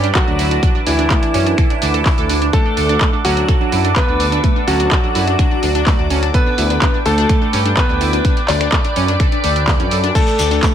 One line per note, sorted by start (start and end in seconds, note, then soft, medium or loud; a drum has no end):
0.00 0.11 G2 loud
0.00 0.08 D4 medium
0.00 2.49 B4 medium
0.00 6.30 D5 medium
0.00 6.30 D6 medium
0.00 closed hi-hat medium
0.15 0.77 F#3 medium
0.15 0.77 F#4 loud
0.15 0.77 F#4 medium
0.15 0.18 A4 medium
0.15 kick loud
0.15 clap loud
0.15 closed hi-hat medium
0.27 0.37 D2 medium
0.27 0.32 D4 medium
0.39 0.59 D2 medium
0.39 0.44 E4 medium
0.39 open hi-hat loud
0.51 0.54 D4 medium
0.51 closed hi-hat medium
0.63 0.67 D4 loud
0.63 6.30 F#5 medium
0.63 kick loud
0.63 closed hi-hat medium
0.75 0.79 D4 medium
0.87 1.06 D2 loud
0.87 2.44 E3 medium
0.87 0.91 D4 medium
0.87 2.44 E4 medium
0.87 2.44 E4 loud
0.87 open hi-hat loud
0.99 1.03 D4 loud
0.99 closed hi-hat medium
1.10 1.13 A3 loud
1.10 kick loud
1.10 clap loud
1.10 closed hi-hat medium
1.23 1.25 D4 medium
1.23 closed hi-hat soft
1.34 1.54 F#2 loud
1.34 1.39 C#4 loud
1.34 open hi-hat loud
1.46 1.51 D4 medium
1.46 closed hi-hat medium
1.58 1.61 A4 medium
1.58 finger snap medium
1.58 kick loud
1.58 closed hi-hat medium
1.70 1.75 D4 medium
1.70 closed hi-hat soft
1.82 2.01 D2 loud
1.82 1.89 D4 loud
1.82 open hi-hat loud
1.94 2.01 A4 medium
1.94 closed hi-hat medium
2.06 2.10 E4 medium
2.06 kick loud
2.06 clap loud
2.06 open hi-hat medium
2.18 2.27 D2 loud
2.18 2.22 A4 loud
2.18 closed hi-hat soft
2.29 2.49 D2 loud
2.29 2.34 D4 medium
2.29 open hi-hat loud
2.42 2.46 D4 medium
2.42 closed hi-hat medium
2.53 3.15 A3 medium
2.53 2.58 D4 loud
2.53 6.30 A4 medium
2.53 3.15 A4 loud
2.53 kick loud
2.53 closed hi-hat medium
2.66 2.70 D4 medium
2.77 2.97 D2 loud
2.77 2.82 D4 medium
2.77 open hi-hat loud
2.89 2.94 D4 loud
2.89 closed hi-hat medium
3.01 3.04 A3 loud
3.01 kick loud
3.01 clap loud
3.01 closed hi-hat medium
3.13 3.16 D4 medium
3.25 3.44 D2 medium
3.25 3.87 F#3 medium
3.25 3.29 C#4 loud
3.25 3.87 F#4 medium
3.25 3.87 F#4 loud
3.25 open hi-hat loud
3.37 3.41 D4 medium
3.37 closed hi-hat medium
3.48 3.51 A4 medium
3.48 finger snap medium
3.48 kick loud
3.48 closed hi-hat medium
3.61 3.65 D4 medium
3.72 3.92 F#2 medium
3.72 3.77 E4 medium
3.72 open hi-hat loud
3.85 3.87 D4 medium
3.85 closed hi-hat medium
3.96 4.58 B3 medium
3.96 4.01 D4 loud
3.96 4.58 B4 medium
3.96 4.58 B4 loud
3.96 kick loud
3.96 clap loud
3.96 closed hi-hat medium
4.08 4.18 D2 medium
4.08 4.13 D4 medium
4.20 4.40 D2 medium
4.20 4.25 D4 medium
4.20 open hi-hat loud
4.32 4.37 D4 loud
4.32 closed hi-hat soft
4.44 4.47 A3 loud
4.44 kick loud
4.44 closed hi-hat medium
4.56 4.59 D4 medium
4.67 4.87 D2 loud
4.67 6.25 F#3 medium
4.67 4.72 C#4 loud
4.67 6.25 F#4 loud
4.67 6.25 F#4 medium
4.67 open hi-hat loud
4.80 4.84 D4 medium
4.80 closed hi-hat medium
4.91 4.94 A4 medium
4.91 kick loud
4.91 clap loud
4.91 closed hi-hat medium
5.04 5.08 D4 medium
5.15 5.35 F#2 loud
5.15 5.20 E4 medium
5.15 open hi-hat loud
5.27 5.30 D4 medium
5.27 closed hi-hat medium
5.39 5.44 D4 loud
5.39 finger snap medium
5.39 kick loud
5.39 closed hi-hat medium
5.51 5.56 D4 medium
5.63 5.82 D2 loud
5.63 5.67 D4 medium
5.63 open hi-hat loud
5.75 5.79 D4 loud
5.75 closed hi-hat medium
5.87 5.89 A3 loud
5.87 kick loud
5.87 clap loud
5.87 open hi-hat medium
5.99 6.08 D2 loud
5.99 6.01 D4 medium
6.10 6.30 D2 loud
6.10 6.15 C#4 loud
6.10 open hi-hat loud
6.23 6.27 D4 medium
6.23 closed hi-hat medium
6.34 6.96 B3 medium
6.34 6.37 A4 medium
6.34 10.11 B4 medium
6.34 6.96 B4 loud
6.34 10.74 D5 medium
6.34 10.11 G5 medium
6.34 10.74 D6 medium
6.34 kick loud
6.34 closed hi-hat medium
6.46 6.51 D4 medium
6.58 6.78 D2 loud
6.58 6.63 E4 medium
6.58 open hi-hat loud
6.70 6.73 D4 medium
6.70 closed hi-hat medium
6.82 6.86 D4 loud
6.82 kick loud
6.82 clap loud
6.82 closed hi-hat medium
6.94 6.98 D4 medium
7.06 7.25 D2 medium
7.06 7.68 A3 medium
7.06 7.10 D4 medium
7.06 7.68 A4 loud
7.06 7.68 A4 medium
7.06 open hi-hat loud
7.18 7.22 D4 loud
7.18 closed hi-hat medium
7.29 7.32 A3 loud
7.29 finger snap medium
7.29 kick loud
7.29 closed hi-hat medium
7.42 7.44 D4 medium
7.53 7.73 G2 medium
7.53 7.58 C#4 loud
7.53 open hi-hat loud
7.66 7.70 D4 medium
7.66 closed hi-hat medium
7.77 8.39 B3 medium
7.77 7.80 A4 medium
7.77 8.39 B4 loud
7.77 kick loud
7.77 clap loud
7.77 closed hi-hat medium
7.89 7.99 D2 medium
7.89 7.94 D4 medium
8.01 8.20 D2 medium
8.01 8.05 E4 medium
8.01 open hi-hat loud
8.13 8.16 D4 medium
8.13 closed hi-hat medium
8.25 8.29 D4 loud
8.25 kick loud
8.25 closed hi-hat medium
8.37 8.41 D4 medium
8.37 closed hi-hat soft
8.48 8.68 D2 loud
8.48 10.06 D4 medium
8.48 8.53 D4 medium
8.48 10.06 D5 loud
8.48 10.06 D5 medium
8.48 clap medium
8.48 open hi-hat loud
8.61 8.65 D4 loud
8.61 finger snap medium
8.61 closed hi-hat medium
8.72 8.75 A3 loud
8.72 kick loud
8.72 clap loud
8.72 closed hi-hat medium
8.85 8.87 D4 medium
8.85 closed hi-hat soft
8.96 9.16 F#2 loud
8.96 9.01 C#4 loud
8.96 open hi-hat loud
9.08 9.13 D4 medium
9.08 closed hi-hat medium
9.20 9.23 A4 medium
9.20 finger snap medium
9.20 kick loud
9.20 closed hi-hat medium
9.32 9.37 D4 medium
9.32 closed hi-hat soft
9.44 9.81 D2 loud
9.44 9.51 A4 medium
9.44 open hi-hat loud
9.56 9.60 D4 medium
9.56 closed hi-hat medium
9.68 9.72 D4 loud
9.68 kick loud
9.68 clap loud
9.68 open hi-hat medium
9.80 9.89 F#2 medium
9.80 9.84 C#4 medium
9.80 closed hi-hat soft
9.91 10.11 F#2 loud
9.91 9.96 A4 medium
9.91 open hi-hat loud
10.04 10.08 D4 loud
10.04 closed hi-hat medium
10.15 10.74 A3 medium
10.15 10.20 D4 loud
10.15 10.74 A4 loud
10.15 10.74 A4 medium
10.15 10.74 F#5 medium
10.15 kick loud
10.15 closed hi-hat medium
10.15 crash medium
10.15 shekere soft
10.27 10.32 D4 medium
10.27 shekere soft
10.39 10.59 D2 loud
10.39 10.44 D4 medium
10.39 open hi-hat loud
10.39 shekere medium
10.51 10.56 D4 loud
10.51 closed hi-hat medium
10.51 shekere soft
10.63 10.66 A3 loud
10.63 kick loud
10.63 clap loud
10.63 closed hi-hat medium
10.63 shekere soft